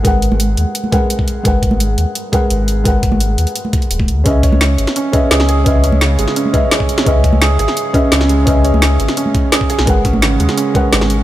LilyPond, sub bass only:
\new Staff \with { instrumentName = "Sub bass" } { \clef bass \time 4/4 \key cis \dorian \tempo 4 = 171 gis,,8. gis,,8. dis,16 r2 r16 | gis,,8. gis,,8. dis,16 r4 r16 gis,,4 | gis,,8. gis,,8. dis,16 r4 r16 dis,,8 dis,8 | cis,8. cis,8. gis,,16 r4 r16 cis,4 |
cis,8. cis,8. gis,,16 r2 r16 | cis,8. cis,8. gis,,16 r4 r16 cis,4 | cis,8. cis,8. gis,,16 r2 b,,16 | gis,,8. gis,,8. dis,16 r4 r16 gis,,4 | }